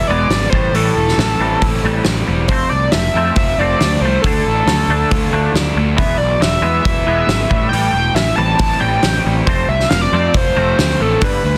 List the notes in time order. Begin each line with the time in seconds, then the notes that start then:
Already playing: B2 E3 B3 E4
0.07 E1 E3 G#3 B3 D5
0.29 G#1 E3 G#3 B3, snare, open hi-hat
0.50 A1 A2 C5, kick
0.54 E3 G3
0.73 A1 A2 E3 G3 A4, open hi-hat
0.96 E1 A2 E3
1.08 snare
1.18 A1 A2 E3, snare, open hi-hat
1.39 A1 A2 E3 G3 C4
1.61 A1 A2 E3 E4, kick, open hi-hat
1.83 A1 A2 E3 G3
2.04 A1 C4, snare, open hi-hat
2.08 E3
2.26 E1 A2 E3 G3
2.48 F1 F2 F3 A3 C4 C5, kick, open hi-hat
2.69 C2 C3 F3 A3 D5
2.92 F1 F3 A3 E5, snare, open hi-hat
3.14 F2 F3 A3 C4
3.36 F1 F3 F4 E5, kick, open hi-hat
3.58 F1 F3 A3 C4 D5
3.81 D2 A3 C4, snare, open hi-hat
4.01 C2 C5
4.05 F3 A3
4.22 D2 D3 A4, kick, open hi-hat
4.26 A3 D4
4.46 A1 D3 A3
4.66 D2 D3 A3, snare, open hi-hat
4.87 D2 D3 A3 D4
5.11 D2 D3 A3 F4, kick, open hi-hat
5.32 D2 D3 A3 D4
5.54 D2 A3 D4, snare, open hi-hat
5.75 D2 D3 A3
5.97 E1 E2 E3 G#3 B3 E5, kick, open hi-hat
6.17 B1 E3 G#3 D5
6.22 B2
6.40 E1 E3 G#3 E5, snare, open hi-hat
6.62 E2 E3 G#3 B3
6.82 E1 E3 G#3 E5, kick, open hi-hat
6.87 E4
7.06 E1 E3 G#3 B3
7.28 G#1 E3 G#3 B3, snare, open hi-hat
7.50 A1 A2 E3 G3, kick
7.69 A1 A2 E3 G5, open hi-hat
7.73 G3
7.91 E1 A2 G5
7.95 E3
8.15 A1 A2 E3 E5, snare, open hi-hat
8.36 A1 A2 E3 G3 C4 A5
8.58 A1 E4 A5, kick, open hi-hat
8.80 A1 A2 E3 G3 G5
9.03 A1 E3 C4, snare, open hi-hat
9.25 A1 A2 E3 G3
9.46 F1 F2 F3 A3 C4 C5, kick, open hi-hat
9.68 C2 C3 F3 A3 E5
9.80 snare
9.89 F1 F3 A3 F5, snare, open hi-hat
10.01 D5
10.12 F2 F3 A3 C4
10.34 F1 F3 F4 C5, kick, open hi-hat
10.47 C5
10.56 F1 F3 A3 C4
10.77 D2 F3 A3 C4 C5, snare, open hi-hat
11.00 A1 F3 A3 A4
11.21 G1 G2 D3 G3 B4, kick, open hi-hat
11.44 D2 G2 D3